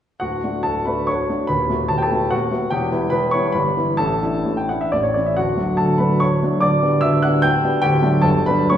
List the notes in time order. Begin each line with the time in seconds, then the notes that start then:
0.20 D1 D2 F#4 F#5
0.44 A3 D4 F#4
0.63 D1 D2 A4 A5
0.86 A3 D4 F#4 B4 B5
1.07 D1 D2 C#5 C#6
1.29 A3 D4 F#4
1.47 D#1 D#2 B4 B5
1.69 A3 B3 F#4
1.89 D#1 D#2 A5
1.98 G5
2.03 A4 A5
2.12 A3 B3 F#4
2.31 D#1 D#2 F#4 F#5
2.51 A3 B3 F#4
2.70 E1 E2 G4 G5
2.91 G3 B3 E4
3.10 E1 E2 B4 B5
3.31 G3 B3 E4 C#5 C#6
3.52 G1 G2 B4 B5
3.77 E3 B3 E4
3.97 A1 A2 A4 A5
4.23 E3 D4 E4
4.46 A1 A2
4.57 G5
4.69 E3 D4 E4 F#5
4.81 E5
4.92 A1 A2 D5
5.03 C#5
5.14 E3 C#4 E4 D5
5.26 E5
5.37 D1 D2 F#4 F#5
5.57 F#3 A3 D4
5.77 D1 D2 A4 A5
5.98 F#3 A3 D4 B4 B5
6.20 D1 D2 C#5 C#6
6.43 F#3 A3 D4
6.61 D1 D2 D5 D6
6.82 G3 B3 D4
7.01 D1 D2 E5 E6
7.22 G3 B3 D4 F#5 F#6
7.42 D1 D2 G5 G6
7.64 G3 B3 D4
7.82 D1 D2 G4 G5
8.02 F#3 A3 D4
8.22 G1 G2 A4 A5
8.46 F#3 B3 D4 B4 B5
8.70 A1 A2 C#5 C#6